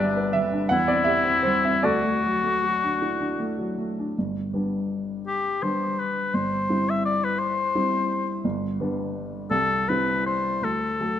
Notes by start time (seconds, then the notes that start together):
Already playing: G1 B3 D4 G4 B4 D5 E5
0.00 G3
0.17 B3
0.33 G3 E5
0.52 D4
0.69 E2 E4 F#5
0.88 C4 D5
1.04 G4 E5
1.25 C4
1.43 G3 C5
1.65 C4 E5
1.83 D2 F#4 A4 D5
2.04 A3
2.23 F#3
2.43 A3
2.63 F#3
2.84 D4
3.02 E4
3.20 D4
3.40 A3
3.58 F#3
3.78 A3
3.99 D4
4.18 G1
4.53 G3 B3 D4
5.27 G4
5.62 G3 B3 D4 C5
6.00 B4
6.34 G1 C5
6.69 G3 C4 E4
6.89 E5
7.05 D5
7.24 B4
7.39 C5
7.75 G3 C4 E4
8.44 G1
8.80 G3 B3 D4
9.51 C2 A4
9.88 G3 C4 E4 B4
10.26 C5
10.62 D2 A4
11.00 F#3 A3 A4